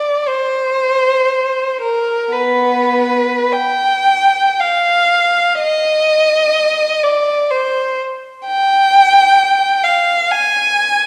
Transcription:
Already playing: D5
0.28 C5
1.81 A#4
2.32 B3 B4
3.53 G5
4.60 F5
5.60 D#5
7.04 D5
7.51 C5
8.46 G5
9.83 F5
10.31 G#5

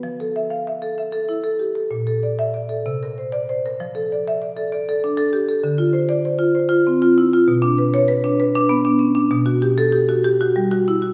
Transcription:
0.03 F3
0.20 A4
0.36 E5
0.50 F5
0.67 E5
0.82 A4
0.98 E5
1.12 A4
1.29 E4
1.44 A4
1.59 G4
1.75 A4
1.91 A#2
2.07 A4
2.23 D5
2.39 E5
2.54 D5
2.69 A4
2.86 C3
3.03 A#4
3.18 C5
3.32 D5
3.49 C5
3.66 A#4
3.80 F3
3.95 A4
4.12 D5
4.28 E5
4.42 D5
4.57 A4
4.72 D5
4.89 A4
5.04 D4
5.17 A4
5.33 G4
5.49 A4
5.64 D3
5.78 F4
5.93 C5
6.09 D5
6.25 C5
6.39 F4
6.55 C5
6.69 F4
6.87 C4
7.02 F4
7.18 E4
7.33 F4
7.48 B2
7.62 D4
7.78 B4
7.94 C#5
8.08 B4
8.24 D4
8.40 B4
8.55 D4
8.69 B3
8.85 D4
8.99 C#4
9.15 D4
9.31 B2
9.46 F#4
9.62 G4
9.78 A4
9.92 G4
10.09 F#4
10.24 G4
10.41 F#4
10.56 G3
10.71 F#4
10.88 E4
11.02 F#4

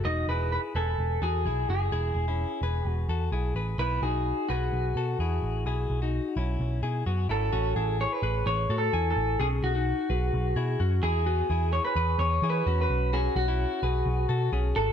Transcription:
0.05 E1 D#4 F#4 D#5
0.28 E1 E4 G#4 B4
0.52 B4
0.75 E1 A4 B4 G#5
0.98 E1
1.22 E2 F#4 G#4 A4
1.45 B1 E4 G#4
1.69 F#1 G#4
1.92 E1 E4 G#4
2.15 E1
2.28 C#4 E4
2.61 E1 G#4 B4
2.85 E1
2.90 F#4
3.08 E2 F#4 A4
3.32 B1 E4 G#4
3.55 A1 G#4 B4
3.78 B1 B3 E4 B4
4.02 B1 D#4 F#4 G#4
4.49 B1 F#4 G#4 B4
4.72 B1
4.95 B2 F#4 A4
5.19 E2 E4 G#4
5.42 A1
5.65 B1 E4 G#4
5.90 B1
6.02 D#4 F#4
6.36 B1 C#4 E4
6.60 B1
6.82 B2 E4 G#4
7.06 F#2 B3 F#4
7.29 G#1 C#4 E4 A4
7.53 A1 C#4 F#4
7.76 A1 E4 G#4
8.01 C#5
8.13 B4
8.22 A1 G#4 B4
8.46 A1 C#5
8.69 A2 F#4 A4
8.78 A4
8.93 E2 E4 G#5
9.11 A4
9.16 A1
9.40 B1 C#4 G#4
9.63 B1 F#4
9.75 D#4 F#4
10.10 B1 G#4 B4
10.33 B1
10.56 B2 E4 G#4
10.80 F#2 C#4 F#4
11.03 E2 E4 G#4
11.26 B3 F#4
11.50 E2 E4 G#4
11.73 C#5
11.85 B4
11.96 E2 G#4 B4
12.19 E2 C#5
12.42 E3 E4 G#4
12.50 B4
12.66 E2 C#4 F#4
12.81 B4
12.89 B1
13.13 C#4 F#4 G#4
13.36 B1 F#4
13.48 C#4 E4
13.83 B1 G#4 B4
14.06 B1
14.29 B2 F#4 A4
14.52 B1 C#4 G#4
14.76 G#1 F#4 A4

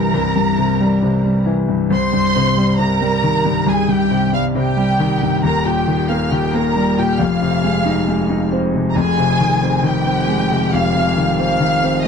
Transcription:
Already playing: C2 G2 C3 E3 G3 A#4 A#5
0.14 C2
0.36 G2
0.58 C3
0.80 G3
1.02 C3
1.24 G3
1.46 E3
1.69 G2
1.90 C2 C5 C6
2.13 G2
2.36 C3
2.57 G3
2.79 C3 A#4 A#5
3.02 G3
3.23 D#3
3.45 G2
3.66 C2 G#4 G#5
3.89 G2 G4 G5
4.11 C3
4.33 G3 F5 F6
4.55 C3 G4 G5
4.77 G3
4.99 D#3
5.22 G2
5.43 D#1 D#2 A#4 A#5
5.65 A#2 G4 G5
5.87 D#3
6.09 A#3 F5 F6
6.31 D#3 G4 G5
6.54 A#3 A#4 A#5
6.75 G3
6.97 A#2 G4 G5
7.19 F1 F2 F5 F6
7.42 C3
7.64 G#3
7.86 D#4
8.08 G#3
8.30 D#4
8.52 C4
8.74 C3
8.89 A#5
8.96 F1 F2 G#4 G#5
9.18 C3
9.40 D#3
9.62 C4
9.83 D#3 G4 G5
10.06 C4
10.28 G#3
10.50 C3
10.73 F1 F2 F5 F6
10.95 C3
11.17 D#3
11.38 C4 F5 F6
11.60 D#3
11.83 C4
12.03 D#5

